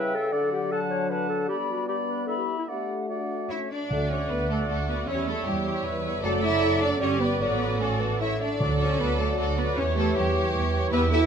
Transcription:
Already playing: C#3 G3 E4 B4 E5 G5
0.14 A4
0.32 D3 F#3 D4 A4 D5 F#5
0.52 G4
0.72 A4 F#5 A5
0.90 C#5
1.10 B4 F#5 A5
1.29 A4
1.48 G3 B3 G4 D5 B5
1.68 F#4
1.87 G4 D5 B5
2.08 B4
2.27 E4 A4 E5 B5
2.37 G4
2.58 E4
2.68 A3 D4 G4 D5 F#5
3.09 F#4 D5 F#5
3.49 C#4 E4 C#5 E5
3.70 D4 D5
3.90 D2 D3 A3 F#4 A4 D5 F#5
4.10 C#4 F#4 C#5 D5
4.29 D2 B3 D4 B4
4.49 A3 F#4 A4 D5
4.68 D2 A3 F#4 A4
4.88 B3 F#4 B4 D5
5.07 E2 G3 C#4 E4 G4 C#5 E5
5.26 A3 E4 A4 C#5
5.46 E2 G3 G4
5.66 E4 C#5
5.84 E2 B4
6.04 E4 C#5
6.23 F#1 F#3 A3 F#4 A4 D5
6.42 E4 E5
6.80 D4 D5
7.00 G1 G3 C#4 G4 C#5 D5
7.20 B3 B4
7.40 A1 F#3 B3 F#4 A4 B4 D5
7.79 A3 C#4 F#4 A4 D5
8.00 B3
8.20 A3 E4 C#5 E5
8.40 A3 D4 D5
8.60 D2 D3 F#3 F#4 A4 D5
8.79 C#4 F#4 C#5 D5
8.99 D2 B3 F#4 B4 D5
9.18 A3 F#4 A4 D5
9.37 D2 A3 F#4 A4 D5
9.57 B3 F#4 B4 D5
9.76 E2 E3 C#4 E4 G4 C#5
9.96 A3 G4 A4 C#5
10.15 E2 G3 G4 C#5
10.36 G4 C#5
10.54 E2 G4 C#5
10.75 G4 C#5
10.91 E2 B3 E4 G4 B4 E5
11.11 E4 F#4 G4 A4 E5

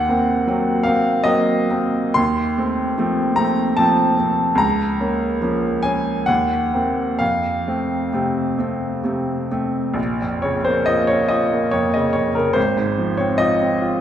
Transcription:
Already playing: D#2 F#5
0.09 A#3 C4
0.47 F#3 A#3 C4
0.83 A#3 C4 F5
1.24 F#3 A#3 C4 D#5
1.70 A#3 C4
2.14 D#2 C6
2.58 A3 C4
2.98 F3 A3 C4
3.36 A3 C4 A#5
3.77 F3 A3 C4 A5
4.19 A3 C4
4.55 C#2 A#5
5.00 A#3 C#4
5.41 F3 A#3 C#4
5.83 A#3 C#4 G#5
6.26 D#2 F#5
6.73 A#3 C4
7.19 F2 F5
7.68 A3 C4
8.13 C3 A3 C4
8.59 A3 C4
9.04 C3 A3 C4
9.52 A3 C4
9.94 A#1
10.22 F2
10.42 C#3 C#5
10.65 A#3 C5
10.86 F4 D#5
11.07 C#4 C#5
11.29 F4 D#5
11.52 A#3
11.71 F2 C#5
11.94 C#3 D#5
12.13 F2 C#5
12.35 C#3 A#4
12.53 G#1 C5
12.77 G#2
12.98 F3
13.17 C4 C#5
13.38 F4 D#5
13.62 C4
13.82 F4

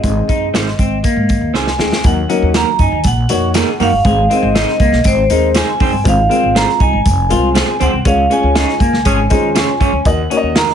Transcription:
Already playing: D#5
0.03 G#1 G#3 C4 D#4 G#4, kick, closed hi-hat
0.29 F#1 D#4, kick, closed hi-hat
0.54 G#1 C4 D#4 G#4 C5, snare, closed hi-hat
0.68 snare
0.79 G#1 C4, kick, closed hi-hat
1.04 A#3, kick, closed hi-hat
1.16 G#2
1.29 G#1, kick, closed hi-hat
1.41 D#2
1.54 C2 C4 D#4 G#4 C5 G#5, snare
1.67 snare
1.78 D2 G#3 C4 D#4 G#4, snare
1.92 snare
2.04 D#2 F#3 A#3 D#4 F#4 A#4 F#5, kick, closed hi-hat
2.29 F#3 A#3 C#4 D#4 F#4 A#4, closed hi-hat
2.42 D#2
2.54 A#3 D#4 F#4 A#4 A#5, snare, closed hi-hat
2.79 F#2 D#4 G#5, kick, closed hi-hat
2.92 D#2
3.04 A#1 F#5, kick, closed hi-hat
3.29 F2 D#3 A#3 D#4 F#4 C#5, closed hi-hat
3.54 A#3 D#4 F#4 G#4 A#4, snare, closed hi-hat
3.80 F#2 A#3 D#4 F#4 A#4 F5, open hi-hat
3.92 G1
4.05 G#1 G#3 C4 D#4 G#4 C5 F5, kick, closed hi-hat
4.30 G#3 C4 D#4 G#4 A#4 D#5, closed hi-hat
4.37 C5
4.42 G#1
4.55 C4 D#4 G#4 C5 D#5, snare, closed hi-hat
4.69 snare
4.80 C2 A#3, kick, closed hi-hat
4.92 A#1, snare
5.04 G#1 C4 C5, kick, closed hi-hat
5.30 D#2 G#3 C4 D#4 G#4 A#4, closed hi-hat
5.55 C4 D#4 G#4 C5 G#5, snare, closed hi-hat
5.80 F2 C4 D#4 G#4 C5, kick, open hi-hat
5.93 G1
6.04 G#1 G#3 C4 F4 G#4 C5, kick, closed hi-hat
6.08 F5
6.29 G#3 C4 F4 G#4 A#4, closed hi-hat
6.36 C5
6.43 G#1
6.55 C4 F4 G#4 C5 A#5, snare, closed hi-hat
6.69 snare
6.80 C2 D#4 G#5, kick, closed hi-hat
6.93 G#1
7.06 F1, kick, closed hi-hat
7.30 C2 G#3 C4 F4 G#4 A#4, closed hi-hat
7.36 C5
7.55 C4 F4 G#4 C5, snare, closed hi-hat
7.80 C#2 C4 F4 G#4 C5 F#5, closed hi-hat
7.93 C2
8.05 C#2 G#3 C#4 F4 G#4 C#5 F5, kick, closed hi-hat
8.30 G#3 C#4 F4 G#4 C#5 G#5, closed hi-hat
8.43 C#2
8.55 C#4 D#4 F4 G#4 C#5, snare, closed hi-hat
8.69 snare
8.80 F2 A#3, kick, closed hi-hat
8.93 C#2, snare
9.05 G#1 F3 G#3 C#4 G#4, kick, closed hi-hat
9.30 G#3 C#4 D#4 F4 G#4 C5, kick, closed hi-hat
9.55 C#4 F4 G#4 C#5 G#5, snare, closed hi-hat
9.80 F2 C#4 F4 G#4 C#5, kick, closed hi-hat
9.93 D2
10.05 D#2 A#3 D#4 F#4 A#4 D#5 F#5, kick, closed hi-hat
10.30 A#3 C#4 D#4 F#4 A#4 C#5, closed hi-hat
10.37 D#5
10.43 D#2
10.55 D#4 F#4 A#4 D#5 A#5, snare, closed hi-hat
10.69 snare

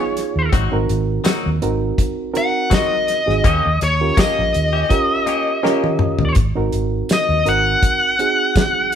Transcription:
Already playing: B3 D#4 F4 G#4 C#5
0.17 snare, closed hi-hat
0.36 D#2
0.52 G#1 F#3 C4 D#4 F#4, kick, closed hi-hat
0.72 G#1 C4 D#4 F#4 A#4
0.89 G#1, closed hi-hat
1.24 F#3 C4 D#4 F#4, snare, closed hi-hat, tambourine
1.46 D#2
1.62 G#1 C4 D#4 F#4 A#4, closed hi-hat
1.98 kick, closed hi-hat
2.33 C4 D#4 F#4 A#4 F#5, closed hi-hat
2.70 F#3 C4 D#4 F#4, kick, snare, closed hi-hat, tambourine
2.74 D#5
3.08 snare, closed hi-hat
3.26 G#1 C4 D#4 F#4 G#4, snare
3.44 D#2 A#3 C#4 G4, kick, closed hi-hat
3.66 D#2
3.81 D#2 C#5, closed hi-hat
4.01 C#4 F4 G4 A#4
4.17 A#3 C#4 G4 D#5, kick, snare, closed hi-hat, tambourine
4.39 A#1
4.54 D#2, closed hi-hat
4.73 C#4 G4
4.89 C#4 F4 G4 A#4, kick, closed hi-hat
5.26 A#3 C#4 G4, closed hi-hat
5.63 A#3 C#4 F4 G4 A#4, snare
5.84 high tom
5.99 mid tom
6.19 D#2, floor tom
6.35 G#1, kick, closed hi-hat
6.55 G#1 C4 D#4 F#4 A#4
6.72 G#1, closed hi-hat
7.09 D#5, snare, closed hi-hat, tambourine
7.29 D#2
7.45 G#1 C4 D#4 F#4 A#4 F#5, closed hi-hat
7.83 kick, closed hi-hat
8.19 C4 D#4 F#4 G#4, closed hi-hat
8.56 kick, snare, closed hi-hat, tambourine

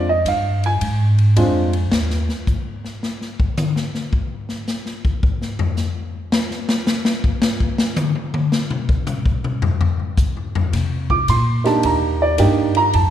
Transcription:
Already playing: F2
0.09 D#5
0.25 G2 F5, hi-hat pedal, ride
0.64 G#5, ride
0.81 G#2, ride
1.18 ride
1.36 F2 G#3 C4 D4 F4, hi-hat pedal, ride
1.73 ride
1.91 D#2, snare
2.10 snare
2.29 snare
2.47 kick, hi-hat pedal
2.85 snare
3.03 snare
3.21 snare
3.40 kick
3.57 hi-hat pedal, high tom
3.76 snare
3.94 snare
4.13 kick
4.49 snare
4.67 snare, hi-hat pedal
4.86 snare
5.05 kick
5.23 kick
5.42 snare
5.59 floor tom
5.77 snare, hi-hat pedal
6.32 snare
6.51 snare
6.69 snare
6.87 snare, hi-hat pedal
7.05 snare
7.24 kick
7.42 snare
7.60 kick
7.78 snare
7.96 hi-hat pedal, high tom
8.15 high tom
8.34 high tom
8.52 snare
8.70 mid tom
8.89 kick
9.07 hi-hat pedal, mid tom
9.26 kick
9.44 mid tom
9.62 floor tom
9.81 floor tom
10.00 floor tom
10.17 kick, hi-hat pedal
10.37 floor tom
10.55 floor tom
10.73 C3, snare, ride
11.10 D6, kick
11.28 A#2 C6, hi-hat pedal, ride
11.64 A#3 D4 D#4 G4 A5, snare, ride
11.83 D#2 A#5, ride
12.22 D5
12.38 G2 A#3 D4 D#4 G4 G5, hi-hat pedal, ride
12.75 A#5, ride
12.93 F2 A5, ride

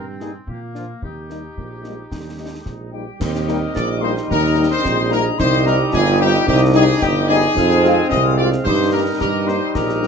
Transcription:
Already playing: G2 C4
0.20 G3 A#3 D#4 G#4, snare
0.47 A#2 A#3 G4, concert bass drum
0.74 F3 A#3 D4 F4, snare
1.02 D#2 D#4 G4, concert bass drum
1.30 G3 A#3 D#4, snare
1.56 A#1 A#3, concert bass drum
1.84 G3 G#3 A#3 D#4, snare
2.11 D#2 G3, concert bass drum, snare
2.39 G3 A#3 D#4
2.52 G#3
2.66 A#1, concert bass drum, snare
2.92 G3 A#3 D#4 G4 G5
3.20 D#2 G3 C4 D#4 A#4 D#5, concert bass drum, snare, crash
3.35 snare
3.47 G3 A#3 D#4, snare
3.74 A#1 A#3 D5 D6, concert bass drum, snare
4.02 G3 A#3 D#4 C5 C6
4.17 snare
4.28 D#2 D#4 A#4 D#5 A#5, concert bass drum, snare
4.56 G3 A#3 D#4
4.71 C5 C6
4.84 A#1 C4 G#4, concert bass drum, snare
5.10 G3 A#3 D4 D#4 A#4 A#5, snare
5.38 C2 G3 D#4 G4 C5 D#5 C6, concert bass drum, snare, crash
5.53 snare
5.66 G3 C4 D#4 A#4 A#5, snare
5.93 G1 F4 G#4 G#5, concert bass drum, snare
6.20 G3 C4 D#4 G4 G5
6.35 snare
6.47 C2 D#4 G4 D#5 G5, concert bass drum, snare
6.74 G3 C4 D#4 G#4 G#5
7.01 G1 G4 D#5 G5, concert bass drum, snare
7.28 G3 C4 D#4 G#4 G#5, snare
7.56 F2 G#3 C4 G#4 F5, concert bass drum, snare, crash
7.71 snare
7.84 G#3 C4 F4, snare
8.10 C2 C4 D#5 D#6, concert bass drum, snare
8.38 G#3 C4 F4 D5 D6
8.53 snare
8.64 G2 G3 D#4 G4 C5 D#5 C6, concert bass drum, snare
8.92 G3 A#3 D#4 A#4 A#5
9.20 G2 G4 A#4 D#5 A#5, concert bass drum, snare
9.47 G3 A#3 D#4 C5 C6, snare
9.73 A#1 G3 G4 A#4 D#5 A#5, concert bass drum, snare, crash
9.89 snare
10.01 G3 A#3 D#4, snare

